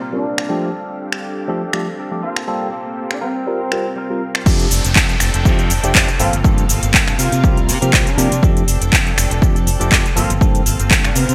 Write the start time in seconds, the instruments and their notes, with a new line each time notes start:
Already playing: string machine A#3 C4 F5
0.00 clean electric guitar G3 C4 F4 A#4
0.12 tine electric piano G3 C4 F4 A#4, horn section D4
0.38 finger snap
0.48 tine electric piano F3 A3 D4 G4, clean electric guitar G3 C4 D4 A4, string machine D4 G4 A4
1.12 finger snap
1.48 tine electric piano F3 A3 D4 G4, clean electric guitar G3 C4 D4 A4
1.73 tine electric piano F3 A3 D4 G4, finger snap
1.98 clean electric guitar G3 C4 D4 A4
2.11 tine electric piano F3 A3 D4 G4
2.22 string machine A#3 C4 G4 A4, clean electric guitar A#3 C4 F4 A4, horn section F4
2.36 finger snap
2.47 tine electric piano G3 A#3 C4 F4 A4
2.72 clean electric guitar C4 F4 A4
3.11 horn section D4, finger snap
3.21 clean electric guitar G3 C4 F4 A#4, horn section C4, string machine A#4
3.47 tine electric piano G3 C4 F4 A#4
3.72 tine electric piano G3 C4 F4 A#4, finger snap
3.96 clean electric guitar G3 C4 F4 A#4
4.10 tine electric piano G3 C4 F4 A#4
4.35 finger snap
4.46 fingered electric bass F2, tine electric piano F3 A3 D4 G4, clean electric guitar G3 C4 D4 A4, string machine D4 A4 G5, kick, crash, downlifter, shaker
4.60 closed hi-hat, shaker
4.70 fingered electric bass F1, clean electric guitar G3 C4 D4 A4, open hi-hat, shaker
4.84 fingered electric bass F1, clean electric guitar C4 D4 A4, closed hi-hat, shaker
4.95 fingered electric bass F2, clean electric guitar G3 C4 D4 A4, kick, clap, shaker
5.09 closed hi-hat, shaker
5.20 fingered electric bass F1, clean electric guitar G3 C4 D4 A4, finger snap, open hi-hat, shaker
5.34 fingered electric bass F1, clean electric guitar C4 D4 A4, closed hi-hat, shaker
5.45 fingered electric bass F2, tine electric piano F3 A3 D4 G4, kick, shaker
5.58 clean electric guitar C4 D4 A4, closed hi-hat, shaker
5.70 fingered electric bass F1, open hi-hat, shaker
5.83 fingered electric bass F1, tine electric piano F3 A3 D4 G4, clean electric guitar C4 D4 A4, closed hi-hat, shaker
5.94 fingered electric bass F2, tine electric piano F3 A3 D4, clean electric guitar G3, kick, clap, shaker
6.09 closed hi-hat, shaker
6.18 fingered electric bass G1, tine electric piano F3 A#3 C4 A4, clean electric guitar A#3 C4 F4 A4, string machine A#3 C4 A4 F5, horn section F4, open hi-hat, shaker
6.33 fingered electric bass G1, closed hi-hat, shaker
6.43 fingered electric bass G2, tine electric piano F3 A#3 C4 A4, clean electric guitar A#3 C4 F4 A4, kick, shaker
6.58 closed hi-hat, shaker
6.68 fingered electric bass G1, clean electric guitar A#3 C4 F4 A4, open hi-hat, shaker
6.82 fingered electric bass G1, clean electric guitar C4 F4 A4, closed hi-hat, shaker
6.93 fingered electric bass G2, clean electric guitar A#3 C4 F4 A4, kick, clap, shaker
7.08 finger snap, closed hi-hat, shaker
7.18 fingered electric bass C3, clean electric guitar G3 C4 F4 A#4, horn section F4, open hi-hat, shaker
7.31 fingered electric bass C3, clean electric guitar C4 F4 A#4, closed hi-hat, shaker
7.43 fingered electric bass C2, tine electric piano F3 A#3 C4 G4, kick, shaker
7.56 clean electric guitar C4 F4 A#4, closed hi-hat, shaker
7.68 fingered electric bass C3, open hi-hat, shaker
7.81 fingered electric bass C3, tine electric piano F3 A#3 C4 G4, clean electric guitar C4 F4 A#4, closed hi-hat, shaker
7.92 fingered electric bass C2, clean electric guitar G3 C4, kick, clap, open hi-hat, shaker
8.07 horn section D4, closed hi-hat, shaker
8.17 fingered electric bass C3, tine electric piano F3 A#3 C4 G4, clean electric guitar G3 C4 F4 A#4, open hi-hat, shaker
8.31 fingered electric bass C3, clean electric guitar C4 F4 A#4, closed hi-hat, shaker
8.42 fingered electric bass F2, tine electric piano F3 A3 D4 G4, clean electric guitar G3 C4 D4 A4, string machine D4 A4 G5, kick, shaker
8.57 closed hi-hat, shaker
8.66 fingered electric bass F1, clean electric guitar G3 C4 D4 A4, open hi-hat, shaker
8.80 fingered electric bass F1, clean electric guitar C4 D4 A4, closed hi-hat, shaker
8.92 fingered electric bass F2, clean electric guitar G3 D4 A4, kick, clap, shaker
9.07 closed hi-hat, shaker
9.16 fingered electric bass F1, clean electric guitar G3 C4 D4 A4, finger snap, open hi-hat, shaker
9.30 fingered electric bass F1, clean electric guitar C4 D4 A4, closed hi-hat, shaker
9.42 fingered electric bass F2, tine electric piano F3 A3 D4 G4, kick, shaker
9.55 clean electric guitar C4 D4 A4, closed hi-hat, shaker
9.67 fingered electric bass F1, open hi-hat, shaker
9.79 fingered electric bass F1, tine electric piano F3 A3 D4 G4, clean electric guitar C4 D4 A4, closed hi-hat, shaker
9.91 fingered electric bass F2, tine electric piano F3 A3 D4 G4, clean electric guitar G3, kick, clap, shaker
10.06 closed hi-hat, shaker
10.15 fingered electric bass G1, tine electric piano F3 A#3 C4 A4, clean electric guitar A#3 C4 F4 A4, string machine A#3 C4 F5, horn section F4, open hi-hat, shaker
10.30 fingered electric bass G1, closed hi-hat, shaker
10.41 fingered electric bass G2, tine electric piano F3 A#3 C4 A4, clean electric guitar C4 F4 A4, kick, shaker
10.55 closed hi-hat, shaker
10.65 fingered electric bass G1, clean electric guitar A#3 C4 F4 A4, open hi-hat, shaker
10.79 fingered electric bass G1, clean electric guitar C4 F4 A4, closed hi-hat, shaker
10.90 fingered electric bass G2, clean electric guitar A#3 C4 F4 A4, kick, clap, shaker
11.04 horn section D4, finger snap, closed hi-hat, shaker
11.15 fingered electric bass C3, clean electric guitar G3 C4 F4 A#4, horn section C4, open hi-hat, shaker
11.28 fingered electric bass C3, clean electric guitar C4 F4 A#4, closed hi-hat, shaker